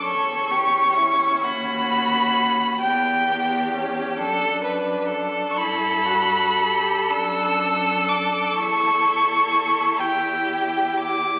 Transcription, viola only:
\new Staff \with { instrumentName = "Viola" } { \time 6/8 \key e \dorian \tempo 4. = 42 cis'2. | b8 b8 cis'8 d'4. | \key g \lydian e'8 fis'8 g'8 d'4. | e'2. | }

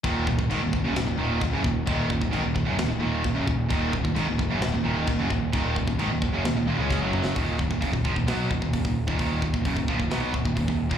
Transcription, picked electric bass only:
\new Staff \with { instrumentName = "Picked electric bass" } { \clef bass \time 4/4 \key ees \minor \tempo 4 = 131 ees,,8 ees,,16 ees,,16 aes,,16 ees,,16 ees,,16 ges,,16 ees,,16 ees,,16 ees,,8 ees,,16 ges,,16 ees,,8 | ees,,8 ees,,16 ees,,16 aes,,16 ees,,16 ees,,16 ges,,16 ees,,16 ees,,16 ees,,8 ees,,16 ges,,16 ees,,8 | ees,,8 ees,,16 ees,,16 aes,,16 ees,,16 ees,,16 ges,,16 ees,,16 ees,,16 ees,,8 ees,,16 ges,,16 ees,,8 | ees,,8 ees,,16 ees,,16 aes,,16 ees,,16 ees,,16 ges,,16 ees,,16 ees,,16 ees,,16 des,8 ges,,8. |
ees,,8 ees,,16 ees,,16 ges,,16 ees,,16 bes,,16 ees,,16 ces,8 ees,,16 ees,,16 ees,,16 ees,,8 ees,,16 | ees,,8 ees,,16 ees,,16 ges,,16 ees,,16 bes,,16 ees,,16 ces,8 ees,,16 ees,,16 ees,,16 ees,,8 ees,,16 | }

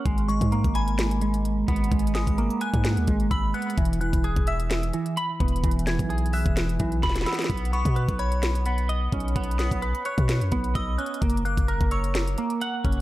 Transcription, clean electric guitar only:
\new Staff \with { instrumentName = "Clean electric guitar" } { \time 4/4 \key gis \minor \tempo 4 = 129 gis8 gis8 ais8 gis''4 gis4 b8 | gis8 gis8 ais8 gis''4 gis8 b''8 b8 | e8 e8 gis'8 e''4 e8 b''8 b8 | e8 e8 gis'8 e''4 e8 b''8 b8 |
b8 b8 b'8 cis''4 b8 dis''8 cis'8 | b8 b8 b'8 cis''4 b8 dis''8 cis'8 | ais8 ais8 ais'8 cis''4 ais8 fis''8 cis'8 | }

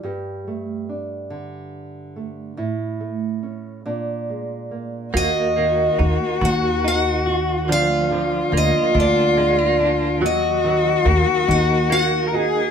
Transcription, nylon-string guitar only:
\new Staff \with { instrumentName = "Nylon-string guitar" } { \time 6/8 \key bes \lydian \tempo 4. = 47 << { <g g'>8 a8 d'4. a8 | e'8 a8 cis'8 d'8 aes8 bes8 | \key ees \minor ges'4 bes4 ges'8 ges'8 | d'4 bes4 d'8 d'8 |
ges'4 bes4 ges'8 ges'8 | } \\ { g,4. d4. | a,4. bes,4. | ees,8 ees4 ees4. | d,8 d4 d4. |
ees,8 ees4 ees4. | } >> }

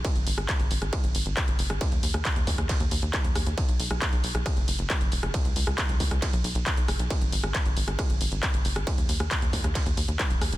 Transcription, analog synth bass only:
\new Staff \with { instrumentName = "Analog synth bass" } { \clef bass \time 4/4 \key b \major \tempo 4 = 136 r16 gis,,16 gis,,16 gis,,16 r16 gis,,16 gis,,16 gis,,16 r16 gis,,16 gis,,16 gis,,16 r16 gis,,16 fis,,16 gis,,16 | r16 dis,16 dis,16 dis,16 r16 dis,16 dis,16 dis,16 r16 dis,16 dis,16 dis,16 r16 dis,16 dis,16 dis,16 | r16 b,,16 b,,16 b,,16 r16 b,,16 b,,16 b,,16 r16 fis,,16 fis,,16 fis,,16 r16 fis,,16 e,,16 fis,,16 | r16 cis,16 cis,16 cis,16 r16 cis,16 cis,16 cis,16 r16 b,,16 b,,16 b,,16 r16 b,,16 fis,,16 b,,16 |
r16 gis,,16 gis,,16 gis,,16 r16 gis,,16 gis,,16 gis,,16 r16 gis,,16 gis,,16 gis,,16 r16 gis,,16 fis,,16 gis,,16 | r16 dis,16 dis,16 dis,16 r16 dis,16 dis,16 dis,16 r16 dis,16 dis,16 dis,16 r16 dis,,16 dis,16 dis,,16 | }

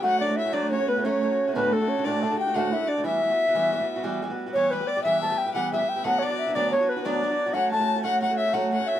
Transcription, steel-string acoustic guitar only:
\new Staff \with { instrumentName = "Steel-string acoustic guitar" } { \time 9/8 \key e \dorian \tempo 4. = 120 <fis a cis' fis'>8 <fis a cis' fis'>16 <a cis' fis'>8 <a cis' fis'>16 <fis a cis' fis'>8 <fis a cis' fis'>16 <a cis' fis'>8 <a cis' fis'>16 <fis a cis' fis'>8 <fis a cis' fis'>16 <a cis' fis'>8 <a cis' fis'>16 | <d, a, d a d' fis'>8 <d a d' fis'>16 <d a d' fis'>8 <d a d' fis'>16 <d, a, d a d' fis'>8 <d a d' fis'>16 <d a d' fis'>8 <d a d' fis'>16 <d, a, d a d' fis'>8 <d a d' fis'>16 <d a d' fis'>8 <d a d' fis'>16 | <e g b fis'>8 <e g b fis'>16 <g b fis'>8 <g b fis'>16 <e g b fis'>8 <e g b fis'>16 <g b fis'>8 <g b fis'>16 <e g b fis'>8 <e g b fis'>16 <g b fis'>8 <g b fis'>16 | <e g b g'>8 <e g b g'>16 <g b g'>8 <g b g'>16 <e g b g'>8 <e g b g'>16 <g b g'>8 <g b g'>16 <e g b g'>8 <e g b g'>16 <g b g'>8 <g b g'>16 |
<d, d fis b d' fis'>8 <fis b d' fis'>16 <fis b d' fis'>8 <fis b d' fis'>16 <d, d fis b d' fis'>8 <fis b d' fis'>16 <fis b d' fis'>8 <fis b d' fis'>16 <d, d fis b d' fis'>8 <fis b d' fis'>16 <fis b d' fis'>8 <fis b d' fis'>16 | <fis a cis' fis'>8 <fis a cis' fis'>16 <a cis' fis'>8 <a cis' fis'>16 <fis a cis' fis'>8 <fis a cis' fis'>16 <a cis' fis'>8 <a cis' fis'>16 <fis a cis' fis'>8 <fis a cis' fis'>16 <a cis' fis'>8 <a cis' fis'>16 | }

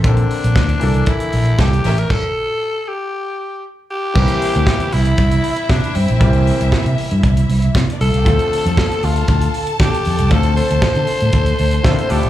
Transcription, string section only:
\new Staff \with { instrumentName = "String section" } { \time 4/4 \key c \mixolydian \tempo 4 = 117 r2. <bes a' e''>16 r16 <cis' bes' e''>8 | r1 | <e' e''>1~ | <e' e''>2.~ \tuplet 3/2 { <e' e''>16 r16 <d' d''>16 <e' e''>16 <f' f''>16 <g' g''>16 } |
<a' a''>1~ | <a' a''>2. \tuplet 3/2 { <a a'>16 <bes bes'>16 <c' c''>16 <d' d''>16 <e' e''>16 r16 } | }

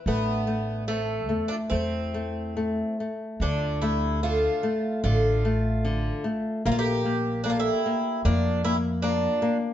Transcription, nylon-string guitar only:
\new Staff \with { instrumentName = "Nylon-string guitar" } { \time 4/4 \key a \minor \tempo 4 = 74 a8 a8 a8 a8 a8 a8 a8 a8 | \key d \minor d8 a8 d8 a8 d8 a8 d8 a8 | bes8 bes8 bes8 bes8 bes8 bes8 bes8 bes8 | }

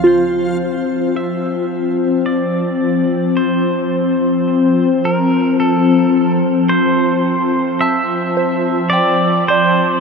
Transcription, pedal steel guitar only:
\new Staff \with { instrumentName = "Pedal steel guitar" } { \time 3/4 \key d \minor \tempo 4 = 54 c''4 e''4 d''4 | c''4. bes'8 a'8. r16 | c''4 e''4 d''8 c''8 | }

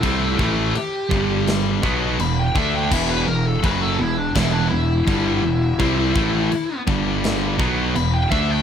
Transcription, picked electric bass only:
\new Staff \with { instrumentName = "Picked electric bass" } { \clef bass \time 4/4 \key e \minor \tempo 4 = 83 c,8 a,,8 r8 g,,4 b,,8 e,,8 d,8 | e,,8 e,,8 fis,,8 e,,8 e,,8 e,,8 g,,8 e,,8 | c,8 a,,8 r8 g,,4 b,,8 e,,8 d,8 | }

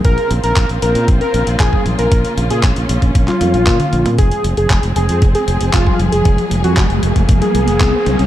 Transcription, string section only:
\new Staff \with { instrumentName = "String section" } { \time 4/4 \key f \phrygian \tempo 4 = 116 << { <des bes f'>1~ | <des bes f'>1 | <f aes aes'>1~ | <f aes aes'>1 | } \\ { c'1 | des'1 | c'1 | bes1 | } >> }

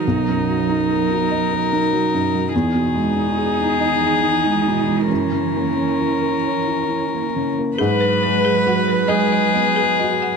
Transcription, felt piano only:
<<
  \new Staff \with { instrumentName = "Felt piano" } { \time 6/8 \key gis \minor \tempo 4. = 46 r2. | r2. | r2. | r4. dis''4. | }
  \new Staff \with { instrumentName = "Felt piano" } { \time 6/8 \key gis \minor b,,16 fis,16 fis16 dis'16 ais'16 fis'16 dis''16 ais'16 dis'16 fis16 fis,16 fis16 | e,16 b,16 gis16 dis'16 gis'16 dis'16 dis''16 gis'16 dis'16 gis16 b,16 gis16 | fis,16 cis16 ais16 cis'16 e'16 ais'16 cis''16 e'16 cis'16 ais16 cis16 ais16 | gis,8 gis8 fis'8 gis8 b8 fis'8 | }
>>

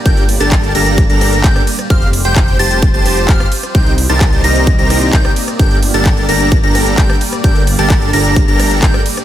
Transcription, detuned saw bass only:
\new Staff \with { instrumentName = "Detuned saw bass" } { \clef bass \time 4/4 \key g \minor \tempo 4 = 130 g,,8. g,,8. g,,8. g,,8. g,,16 r8. | f,,8. f,,8. f,,8. f,,8. f,,16 r8. | c,8. c,8. c,8. c,8. c,16 r8. | g,,8. g,,8. g,,8. g,,8. g,,16 r8. |
g,,8. g,,8. g,,8. g,,8. g,,16 r8. | }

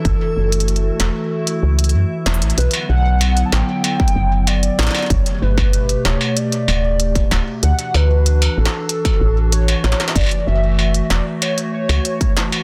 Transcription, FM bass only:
\new Staff \with { instrumentName = "FM bass" } { \clef bass \time 4/4 \key b \minor \tempo 4 = 95 fis,,16 r16 fis,,8. r16 e,,16 r8. cis,8 fis,16 r16 e,,16 a,,16 | b,,16 r16 b,,8. r16 a,,16 r8. fis,,8. r16 a,,16 r16 | g,,16 r16 g,,8. r16 d,,16 r8. d,,8. r16 d,,16 r16 | d,16 r16 d,8. r16 a,,16 r8. a,,8. r16 a,,16 r16 |
fis,,16 r16 fis,,8. r16 e,,16 r4 cis,16 r4 | }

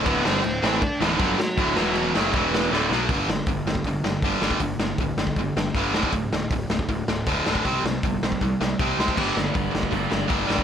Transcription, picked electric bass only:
\new Staff \with { instrumentName = "Picked electric bass" } { \clef bass \time 4/4 \key d \mixolydian \tempo 4 = 158 d,,8 g,,8 d,,8 a,,8 r8 d,,8 g,,8 r8 | d,,8 e,,4 fis,,8 e,,4 d,,8 b,,8 | \key g \lydian g,,8 g,,8 g,,8 g,,8 g,,8 g,,8 g,,8 g,,8 | g,,8 g,,8 d,,8 g,,8 g,,8 g,,8 g,,8 d,,8 |
d,,8 d,,8 d,,8 d,,8 d,,8 d,,8 d,,8 d,,8 | c,8 c,8 g,,8 c,8 c,8 c,8 c,8 c,8 | g,,8 g,,8 g,,8 g,,8 g,,8 g,,8 g,,8 g,,8 | }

